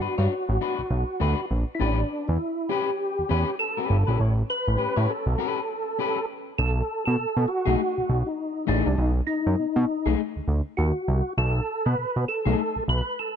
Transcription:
0.00 0.08 G2 soft
0.00 0.16 D4 medium
0.00 1.46 F#4 medium
0.00 0.16 F#4 medium
0.00 0.17 B4 medium
0.18 0.28 G2 loud
0.18 0.33 D4 medium
0.18 0.33 F#4 medium
0.18 0.32 C#5 medium
0.49 0.58 A1 loud
0.61 0.80 D4 medium
0.61 0.80 F#4 medium
0.61 0.81 B4 medium
0.79 0.83 B1 soft
0.90 1.04 B1 medium
1.20 1.35 D2 loud
1.20 1.39 D4 medium
1.20 1.40 F#4 medium
1.20 1.40 B4 loud
1.51 1.65 A#1 medium
1.75 1.80 E4 medium
1.80 2.04 A1 loud
1.80 1.99 C#4 medium
1.80 2.30 D4 medium
1.80 2.00 G4 medium
1.80 2.00 B4 loud
2.28 2.38 E2 loud
2.28 2.71 E4 loud
2.69 2.89 C#4 medium
2.69 3.55 G4 loud
2.69 2.89 G4 medium
2.69 2.90 B4 loud
3.19 3.23 E2 soft
3.29 3.44 E2 medium
3.29 3.49 C#4 medium
3.29 3.49 G4 medium
3.29 3.50 B4 loud
3.59 4.21 A4 medium
3.77 3.96 C#4 medium
3.77 3.96 G4 medium
3.77 3.96 B4 medium
3.90 4.04 G1 loud
4.07 4.17 A#1 medium
4.07 4.19 C#4 medium
4.07 4.18 G4 medium
4.07 4.18 B4 medium
4.20 4.43 A1 loud
4.20 4.34 C#5 medium
4.50 5.11 B4 loud
4.68 4.77 A1 medium
4.77 4.87 A2 soft
4.77 4.94 C#4 medium
4.77 4.95 G4 medium
4.77 4.95 B4 medium
4.96 5.07 A2 loud
4.96 5.12 C#4 medium
4.96 5.11 G4 medium
4.96 5.11 C#5 medium
5.10 6.26 A4 medium
5.26 5.36 B1 loud
5.38 5.59 C#4 medium
5.38 5.59 G4 medium
5.38 5.60 B4 loud
5.99 6.18 C#4 medium
5.99 6.19 G4 medium
5.99 6.19 B4 medium
6.58 6.82 B1 loud
6.58 7.04 A4 loud
7.05 7.16 B2 loud
7.05 7.49 A4 loud
7.19 7.26 B2 medium
7.37 7.46 B2 loud
7.48 8.29 F#4 loud
7.65 7.76 B1 medium
7.65 7.81 A3 medium
7.65 7.80 D#4 medium
7.65 7.80 G#4 medium
7.98 8.02 B1 soft
8.09 8.23 B1 medium
8.26 8.65 D#4 medium
8.67 8.82 A1 loud
8.67 8.87 A3 medium
8.67 8.99 D4 medium
8.67 8.87 D#4 loud
8.67 8.88 G#4 medium
8.86 8.96 C2 loud
8.98 9.21 B1 loud
8.98 9.12 D#4 medium
9.27 10.13 D#4 loud
9.46 9.56 F#2 loud
9.59 9.66 B2 soft
9.76 9.85 B2 loud
10.06 10.15 B1 medium
10.06 10.20 A3 medium
10.06 10.20 D#4 medium
10.06 10.20 G#4 medium
10.36 10.41 D2 soft
10.48 10.62 D2 medium
10.77 10.92 D#2 loud
10.77 11.33 F#4 medium
11.08 11.22 C2 loud
11.38 11.61 B1 loud
11.38 11.87 A4 loud
11.86 11.95 B2 loud
11.86 12.25 B4 loud
11.98 12.05 B2 soft
12.16 12.25 B2 medium
12.28 12.84 A4 loud
12.45 12.55 B1 loud
12.45 12.60 A3 medium
12.45 12.60 D#4 medium
12.45 12.59 G#4 medium
12.76 12.81 B1 soft
12.88 13.02 B1 medium
12.88 13.19 B4 loud
13.19 13.36 A4 medium

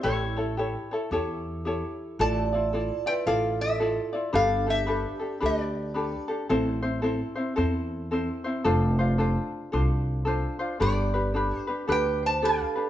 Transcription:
0.01 0.74 A1 loud
0.01 0.53 E4 medium
0.01 0.37 E4 medium
0.01 0.36 G4 medium
0.01 0.36 A4 medium
0.01 0.54 C#5 medium
0.01 0.35 C#5 medium
0.36 0.57 E4 soft
0.36 0.57 A4 medium
0.36 0.57 C#5 medium
0.57 0.92 E4 medium
0.57 0.91 G4 medium
0.57 0.92 A4 medium
0.57 0.90 C#5 medium
0.91 1.11 E4 soft
0.91 1.11 A4 soft
0.91 1.12 C#5 medium
1.11 1.81 E2 medium
1.11 1.66 E4 medium
1.11 1.64 G4 medium
1.11 1.66 A4 medium
1.11 1.66 C#5 medium
1.65 2.20 E4 medium
1.65 2.19 G4 medium
1.65 2.19 A4 medium
1.65 2.20 C#5 medium
2.19 2.89 A1 loud
2.19 2.53 E4 medium
2.19 2.53 F4 medium
2.19 2.52 A4 medium
2.19 3.03 D5 medium
2.19 2.51 D5 medium
2.19 3.06 A5 loud
2.53 2.73 E4 medium
2.53 2.73 F4 soft
2.53 2.72 D5 medium
2.73 3.06 E4 medium
2.73 3.07 F4 medium
2.73 3.06 A4 medium
2.73 3.05 D5 medium
3.06 3.26 E4 soft
3.06 3.26 F4 soft
3.06 3.17 B4 medium
3.06 3.26 D5 soft
3.06 3.12 G5 loud
3.26 3.97 A1 loud
3.26 3.80 E4 medium
3.26 3.79 F4 medium
3.26 3.79 A4 medium
3.26 3.59 A4 medium
3.26 3.81 D5 medium
3.26 3.61 F5 medium
3.61 4.11 A4 medium
3.61 4.11 E5 medium
3.80 4.13 E4 medium
3.80 4.14 F4 medium
3.80 4.12 A4 medium
3.80 4.12 D5 medium
4.13 4.33 E4 soft
4.13 4.32 F4 soft
4.13 4.33 D5 medium
4.33 5.04 G1 loud
4.33 4.67 D4 medium
4.33 4.66 G4 medium
4.33 4.65 A4 medium
4.33 4.66 A4 medium
4.33 4.67 B4 medium
4.33 4.70 F5 loud
4.67 4.86 D4 soft
4.67 4.86 G4 soft
4.67 5.39 G4 medium
4.67 4.87 A4 medium
4.67 5.45 E5 medium
4.87 5.20 D4 medium
4.87 5.20 G4 medium
4.87 5.18 A4 medium
4.87 5.21 B4 medium
5.20 5.40 D4 soft
5.20 5.40 G4 soft
5.20 5.41 A4 soft
5.40 6.12 D2 medium
5.40 5.94 D4 medium
5.40 5.94 G4 medium
5.40 6.26 G4 medium
5.40 5.96 A4 medium
5.40 5.93 B4 medium
5.46 6.27 D5 medium
5.94 6.29 D4 medium
5.94 6.28 G4 medium
5.94 6.27 A4 medium
5.94 6.29 B4 medium
6.28 6.50 D4 soft
6.28 6.50 G4 medium
6.28 6.48 A4 medium
6.49 7.20 A1 loud
6.49 6.83 C4 loud
6.49 6.83 E4 medium
6.49 6.82 A4 medium
6.49 6.81 C5 medium
6.83 7.01 C4 soft
6.83 7.02 E4 medium
6.83 7.02 C5 medium
7.02 7.37 C4 medium
7.02 7.36 E4 medium
7.02 7.35 A4 medium
7.02 7.34 C5 medium
7.36 7.55 C4 soft
7.36 7.56 E4 medium
7.36 7.55 C5 medium
7.56 8.28 E2 medium
7.56 8.11 C4 medium
7.56 8.11 E4 medium
7.56 8.11 A4 medium
7.56 8.13 C5 medium
8.11 8.45 C4 medium
8.11 8.44 E4 medium
8.11 8.44 A4 medium
8.11 8.43 C5 medium
8.44 8.64 C4 medium
8.44 8.65 E4 medium
8.44 8.64 C5 medium
8.64 9.35 F1 loud
8.64 8.99 D4 medium
8.64 8.99 F4 loud
8.64 8.99 A4 medium
8.64 8.98 C5 medium
8.99 9.17 D4 medium
8.99 9.18 F4 medium
8.99 9.19 C5 medium
9.18 9.73 D4 medium
9.18 9.72 F4 medium
9.18 9.72 A4 medium
9.18 9.72 C5 medium
9.72 10.43 C2 medium
9.72 10.26 D4 medium
9.72 10.26 F4 medium
9.72 10.25 A4 medium
9.72 10.25 C5 medium
10.25 10.60 D4 medium
10.25 10.59 F4 medium
10.25 10.60 A4 medium
10.25 10.58 C5 medium
10.59 10.79 D4 soft
10.59 10.80 F4 medium
10.59 10.79 C5 medium
10.80 11.51 G1 loud
10.80 11.14 D4 medium
10.80 11.14 G4 medium
10.80 11.85 G4 medium
10.80 11.13 A4 medium
10.80 11.13 B4 medium
10.80 11.59 D5 medium
11.14 11.33 D4 soft
11.14 11.35 G4 medium
11.14 11.33 B4 medium
11.34 11.68 D4 medium
11.34 11.67 G4 medium
11.34 11.67 A4 medium
11.34 11.66 B4 medium
11.59 11.92 C5 medium
11.67 11.87 D4 soft
11.67 11.87 G4 soft
11.67 11.87 B4 medium
11.88 12.59 D2 loud
11.88 12.42 D4 medium
11.88 12.43 G4 medium
11.88 12.41 A4 medium
11.88 12.43 B4 medium
11.88 12.21 B4 medium
11.92 12.25 G5 loud
12.23 12.42 C5 medium
12.23 12.45 A5 loud
12.42 12.76 D4 medium
12.42 12.75 G4 medium
12.42 12.75 A4 medium
12.42 12.90 A4 medium
12.42 12.74 B4 medium
12.42 12.90 F5 loud
12.76 12.90 D4 soft
12.76 12.90 G4 medium
12.76 12.90 B4 medium

